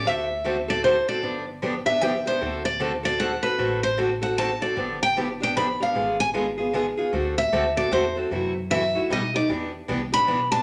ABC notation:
X:1
M:3/4
L:1/8
Q:"Swing" 1/4=152
K:Dmix
V:1 name="Steel-string acoustic guitar"
e3 d c d- | d z2 e g c- | c d z d f B- | B c z f a d- |
d g z g b =f- | =f ^g z4 | z e2 d c z | z2 e2 ^d =d |
z3 b2 a |]
V:2 name="Steel-string acoustic guitar"
[D,A,CFA] z [D,A,CFA] [CFA] [D,A,CFA] [CFA] | [D,=F,B,DG] z [D,F,B,DG] [B,DG] [D,F,B,DG] [B,DG] | [D,A,CFA] z [D,A,CFA] [CFA] [D,A,CFA] [CFA] | [D,A,CFA] z [D,A,CFA] [CFA] [D,A,CFA] [CFA] |
[D,=F,B,DG] z [D,F,B,DG] [B,DG] [D,F,B,DG] [B,DG] | [D,^G,B,^E^G] z [D,G,B,EG] [B,EG] [D,G,B,EG] [B,EG] | [D,A,CFA] z [D,A,CFA] [CFA] [D,A,CFA] [CFA] | [C,E,A,EF] z [C,E,A,EF] [A,EF] [B,,G,A,^DG] [A,DG] |
[E,B,DG] z [E,B,DG] [B,DG] [E,B,DG] [B,DG] |]
V:3 name="Upright bass" clef=bass
D,,6 | G,,,6 | D,,6 | A,,,6 |
G,,,6 | ^G,,,6 | D,,2 D,,2 E,,2 | F,,4 B,,,2 |
E,,2 C,,2 B,,,2 |]